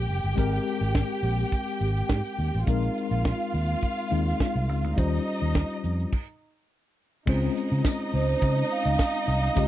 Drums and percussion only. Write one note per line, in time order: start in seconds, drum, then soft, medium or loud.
0.10 open hi-hat medium
0.25 closed hi-hat soft
0.38 kick loud
0.38 closed hi-hat medium
0.53 closed hi-hat medium
0.67 closed hi-hat medium
0.82 closed hi-hat soft
0.95 kick loud
0.95 snare loud
1.10 closed hi-hat soft
1.23 open hi-hat medium
1.39 closed hi-hat soft
1.52 kick medium
1.52 closed hi-hat medium
1.67 closed hi-hat medium
1.81 closed hi-hat medium
1.96 closed hi-hat soft
2.09 kick loud
2.09 snare loud
2.25 closed hi-hat soft
2.38 open hi-hat medium
2.54 closed hi-hat soft
2.67 kick loud
2.67 closed hi-hat medium
2.82 closed hi-hat medium
2.98 closed hi-hat medium
3.12 closed hi-hat soft
3.25 kick loud
3.25 snare loud
3.40 closed hi-hat soft
3.54 open hi-hat medium
3.70 closed hi-hat soft
3.83 kick medium
3.83 closed hi-hat medium
3.99 closed hi-hat medium
4.12 closed hi-hat medium
4.28 snare soft
4.28 closed hi-hat soft
4.40 kick loud
4.40 snare loud
4.56 closed hi-hat soft
4.69 open hi-hat medium
4.85 closed hi-hat soft
4.98 kick loud
4.98 closed hi-hat medium
5.13 closed hi-hat soft
5.27 closed hi-hat medium
5.43 closed hi-hat soft
5.55 kick loud
5.55 snare loud
5.70 closed hi-hat soft
5.84 closed hi-hat medium
5.99 closed hi-hat soft
6.12 kick loud
6.12 crash medium
7.27 kick loud
7.27 crash loud
7.57 closed hi-hat medium
7.72 closed hi-hat soft
7.84 kick loud
7.84 snare loud
7.84 tambourine loud
8.00 closed hi-hat soft
8.13 open hi-hat medium
8.29 closed hi-hat soft
8.42 kick loud
8.42 closed hi-hat medium
8.58 closed hi-hat soft
8.71 closed hi-hat medium
8.86 snare soft
8.86 closed hi-hat soft
8.99 kick loud
8.99 snare loud
8.99 tambourine medium
9.15 closed hi-hat soft
9.27 open hi-hat medium
9.44 closed hi-hat soft
9.56 kick loud
9.56 closed hi-hat medium